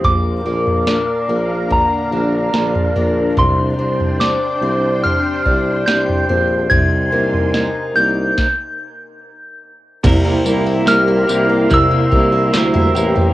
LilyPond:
<<
  \new Staff \with { instrumentName = "Synth bell" } { \time 4/4 \key bes \mixolydian \tempo 4 = 72 d'''2 bes''4. r8 | c'''4 d'''4 f'''4 g'''4 | aes'''4. g'''2 r8 | \key c \mixolydian r4 f'''4 e'''2 | }
  \new Staff \with { instrumentName = "String machine" } { \time 4/4 \key bes \mixolydian << { <bes' f'' bes''>1 | <c'' g'' c'''>1 | <bes' aes'' c'''>2 r2 | \key c \mixolydian <e' bes'' c'''>1 | } \\ { d'1~ | d'1 | ees'2 r2 | g'1 | } >> }
  \new Staff \with { instrumentName = "Clean electric guitar" } { \time 4/4 \key bes \mixolydian r1 | r1 | r1 | \key c \mixolydian <c g bes e' bes'>8 <bes e' bes'>8 <g bes e' bes'>8 <bes e' bes'>8 <c g bes e' bes'>8 <bes e' bes'>8 <g bes e' bes'>8 <bes e' bes'>8 | }
  \new Staff \with { instrumentName = "Twelve-string acoustic guitar" } { \time 4/4 \key bes \mixolydian bes,8 bes8 d'8 bes8 d8 d'8 f8 bes8 | c8 c'8 d'8 c'8 g8 d'8 g8 c'8 | c8 bes8 ees'8 bes8 r2 | \key c \mixolydian <c e'>16 g16 bes16 e'16 bes16 e'16 g16 bes16 <c e'>16 g16 bes16 e'16 bes16 e'16 g16 bes16 | }
  \new Staff \with { instrumentName = "Tuba" } { \clef bass \time 4/4 \key bes \mixolydian bes,,8 bes,,8. r16 bes,,8. r16 bes,,8 bes,,8 bes,,8 | c,8 c,8. r16 c,8. r16 c,8 c,8 bes,,8 | c,8 c,8. r16 c,8 r2 | \key c \mixolydian c,8 c,8 c,8 c,8 c,8 c,8 d,8 a,,8 | }
  \new DrumStaff \with { instrumentName = "Drums" } \drummode { \time 4/4 <bd tomfh>8. tomfh16 sn4 <bd tomfh>4 sn16 tomfh16 tomfh8 | <bd tomfh>8. tomfh16 sn4 tomfh8 bd8 sn16 tomfh16 tomfh8 | <bd tomfh>8. tomfh16 sn4 <bd sn>4 r4 | <cymc bd tamb tomfh>8 tamb8 <sn tamb>8 tamb8 <bd tamb tomfh>8 bd8 <sn tamb>16 tomfh16 tamb16 tomfh16 | }
>>